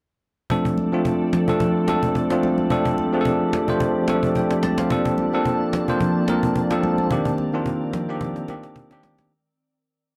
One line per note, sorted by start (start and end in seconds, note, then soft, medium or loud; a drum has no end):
0.50 0.84 F3 medium
0.50 7.07 F3 medium
0.50 0.84 A3 medium
0.50 4.87 C4 medium
0.50 0.84 C4 medium
0.50 0.84 D4 medium
0.50 2.68 A4 medium
0.50 0.84 A4 medium
0.50 9.27 D5 medium
0.50 cajon bass loud
0.65 cajon bass loud
0.77 cajon slap medium
0.77 high conga medium
0.92 1.36 F3 medium
0.92 1.36 A3 medium
0.92 1.36 C4 medium
0.92 1.36 D4 medium
0.92 1.36 F4 medium
0.92 cajon slap soft
1.05 cajon bass loud
1.21 cajon slap soft
1.33 cajon slap medium
1.33 low conga medium
1.48 1.80 F3 medium
1.48 1.80 A3 medium
1.48 1.81 C4 medium
1.48 1.81 D4 medium
1.48 1.81 A4 medium
1.48 cajon bass medium
1.60 cajon bass loud
1.60 low conga medium
1.76 cajon slap soft
1.88 2.21 F3 medium
1.88 2.21 A3 medium
1.88 2.22 C4 medium
1.88 2.22 D4 medium
1.88 2.22 A4 medium
1.88 cajon slap loud
1.88 high conga medium
2.03 cajon bass medium
2.15 cajon bass medium
2.30 2.63 F3 medium
2.30 2.63 A3 medium
2.30 2.63 C4 medium
2.30 2.63 D4 medium
2.30 2.64 F4 medium
2.30 cajon slap medium
2.43 cajon slap medium
2.43 high conga medium
2.58 cajon slap soft
2.58 high conga medium
2.70 3.04 F3 medium
2.70 3.04 A3 medium
2.70 3.04 C4 medium
2.70 3.04 D4 medium
2.70 4.88 G4 medium
2.70 3.05 A4 medium
2.70 cajon bass loud
2.85 cajon bass loud
2.98 cajon slap soft
2.98 high conga medium
3.12 3.56 F3 medium
3.12 3.56 A3 medium
3.12 3.56 C4 medium
3.12 3.56 D4 medium
3.12 3.19 G#4 medium
3.12 cajon slap soft
3.21 3.60 A4 medium
3.25 cajon bass loud
3.41 cajon slap soft
3.53 cajon slap medium
3.53 low conga medium
3.68 4.00 F3 medium
3.68 4.01 A3 medium
3.68 4.01 C4 medium
3.68 4.01 D4 medium
3.68 4.01 C5 medium
3.68 cajon bass medium
3.80 cajon bass loud
3.80 low conga medium
3.96 cajon slap soft
4.08 4.41 F3 medium
4.08 4.42 A3 medium
4.08 4.42 C4 medium
4.08 4.42 D4 medium
4.08 4.42 A4 medium
4.08 cajon slap loud
4.08 high conga medium
4.23 cajon bass medium
4.35 4.62 D5 medium
4.35 4.62 G5 medium
4.35 cajon bass medium
4.51 cajon slap medium
4.63 4.78 D5 medium
4.63 4.78 A5 medium
4.63 cajon slap loud
4.63 high conga medium
4.78 5.05 C5 medium
4.78 5.05 F5 medium
4.78 cajon slap medium
4.78 high conga medium
4.90 5.24 F3 medium
4.90 7.09 A#3 medium
4.90 5.24 A#3 medium
4.90 5.24 C4 medium
4.90 5.25 D4 medium
4.90 5.25 A4 medium
4.90 7.09 A5 medium
4.90 cajon bass loud
5.05 cajon bass loud
5.18 cajon slap medium
5.18 high conga medium
5.33 5.76 F3 medium
5.33 5.76 A#3 medium
5.33 5.76 C4 medium
5.33 5.77 D4 medium
5.33 5.77 A4 medium
5.33 cajon slap soft
5.45 cajon bass loud
5.61 cajon slap soft
5.73 cajon slap medium
5.73 low conga medium
5.88 6.21 F3 medium
5.88 6.21 A#3 medium
5.88 6.21 C4 medium
5.88 6.21 D4 medium
5.88 6.21 C5 medium
5.88 cajon bass medium
6.01 cajon bass loud
6.01 low conga medium
6.16 cajon slap soft
6.28 6.62 F3 medium
6.28 6.62 A#3 medium
6.28 6.62 C4 medium
6.28 6.62 D4 medium
6.28 6.62 A#4 medium
6.28 cajon slap loud
6.28 high conga medium
6.43 cajon bass medium
6.56 cajon bass medium
6.71 7.03 F3 medium
6.71 7.03 A#3 medium
6.71 7.04 C4 medium
6.71 7.04 D4 medium
6.71 7.04 A4 loud
6.71 cajon slap medium
6.83 cajon slap medium
6.83 high conga medium
6.98 cajon slap soft
6.98 high conga medium
7.11 9.29 D#3 medium
7.11 7.44 D#3 medium
7.11 7.44 A#3 medium
7.11 9.29 C4 medium
7.11 7.45 C4 medium
7.11 7.45 D4 medium
7.11 7.45 G4 medium
7.11 9.29 A#4 medium
7.11 cajon bass loud
7.25 cajon bass loud
7.38 cajon slap medium
7.38 high conga medium
7.53 7.96 D#3 medium
7.53 7.96 A#3 medium
7.53 7.97 C4 medium
7.53 7.97 D4 medium
7.53 7.97 F4 medium
7.53 cajon slap soft
7.66 cajon bass loud
7.81 cajon slap soft
7.93 cajon slap medium
7.93 low conga medium
8.09 8.41 D#3 medium
8.09 8.41 A#3 medium
8.09 8.41 C4 medium
8.09 8.42 D4 medium
8.09 8.42 G4 medium
8.09 cajon slap soft
8.21 cajon bass loud
8.21 cajon slap medium
8.21 low conga medium
8.36 cajon slap medium
8.48 8.82 D#3 medium
8.48 8.82 A#3 medium
8.48 8.82 C4 medium
8.48 8.82 D4 medium
8.48 8.83 G4 medium
8.48 cajon slap medium
8.48 high conga medium
8.63 cajon slap medium
8.76 cajon bass medium
8.76 cajon slap medium
8.91 9.23 D#3 medium
8.91 9.24 A#3 medium
8.91 9.24 C4 medium
8.91 9.24 D4 medium
8.91 9.24 G4 loud
8.91 cajon slap medium
9.03 cajon slap loud
9.03 high conga medium
9.18 cajon slap medium
9.18 high conga medium